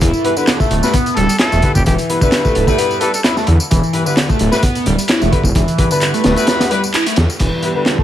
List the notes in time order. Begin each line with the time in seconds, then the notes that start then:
0.01 E1 E3, kick, closed hi-hat, tambourine
0.14 tambourine
0.24 G3 B3 E4 B4, closed hi-hat
0.37 D3 G3 B3 E4 B4, tambourine
0.47 snare, clap, closed hi-hat, tambourine
0.60 A3, kick, tambourine
0.71 D1, closed hi-hat
0.83 G3 B3 E4 B4, snare, tambourine
0.93 B3, kick, closed hi-hat, tambourine
1.06 closed hi-hat, tambourine
1.16 D1 G3 A4, closed hi-hat
1.29 closed hi-hat, tambourine
1.39 E4 A4, snare, clap, closed hi-hat, tambourine
1.52 E1 A3, closed hi-hat, tambourine
1.62 D3 G3 B3 E4 B4, kick, closed hi-hat
1.75 E1 G4, kick, tambourine
1.86 E1 E3 G4, kick, closed hi-hat, tambourine
1.98 closed hi-hat, tambourine
2.09 G3 B3 E4 B4, closed hi-hat
2.21 D3 G3 B3 E4 B4, kick, tambourine
2.32 snare, clap, closed hi-hat, tambourine
2.45 A3, kick, tambourine
2.55 D1, closed hi-hat
2.67 G3 B3 E4 B4, kick, tambourine
2.78 B3, closed hi-hat, tambourine
2.91 tambourine
3.01 G3 B3 E4 A4 B4, closed hi-hat
3.14 A4, closed hi-hat, tambourine
3.24 E4, snare, clap, closed hi-hat, tambourine
3.37 A3, snare, tambourine
3.47 E2 D3, closed hi-hat
3.60 tambourine
3.70 E1 E3, kick, closed hi-hat, tambourine
3.83 tambourine
3.93 G3 B3 E4 B4, closed hi-hat
4.06 D3 G3 B3 E4 B4, tambourine
4.17 snare, clap, closed hi-hat, tambourine
4.29 A3, kick, tambourine
4.39 D1, closed hi-hat
4.52 G3 B3 E4 B4, snare, tambourine
4.63 B3, kick, closed hi-hat, tambourine
4.75 closed hi-hat, tambourine
4.86 D1 G3, closed hi-hat
4.98 closed hi-hat, tambourine
5.08 E4, snare, clap, closed hi-hat, tambourine
5.21 E1 A3, closed hi-hat, tambourine
5.32 D3 G3 B3 E4 B4, kick, closed hi-hat
5.44 E1, kick, tambourine
5.55 E1 E3, kick, closed hi-hat, tambourine
5.68 closed hi-hat, tambourine
5.78 G3 B3 E4 B4, kick, closed hi-hat
5.91 D3 G3 B3 E4 B4, closed hi-hat, tambourine
6.01 clap, closed hi-hat, tambourine
6.14 A3, closed hi-hat, tambourine
6.24 D1, snare, closed hi-hat
6.36 G3 B3 E4 B4, closed hi-hat, tambourine
6.47 B3, snare, closed hi-hat, tambourine
6.60 snare, closed hi-hat, tambourine
6.70 G3 B3 E4 B4, closed hi-hat
6.84 tambourine
6.94 E4, clap, closed hi-hat, tambourine
7.06 A3, closed hi-hat, tambourine
7.16 E2 D3, snare, closed hi-hat
7.30 tambourine
7.39 E1 E3 G3 B3 G4, kick, closed hi-hat, crash
7.63 G3 B3 E4 B4, closed hi-hat
7.75 D3 G3 B3 E4 B4
7.86 snare, clap, closed hi-hat
7.98 A3, kick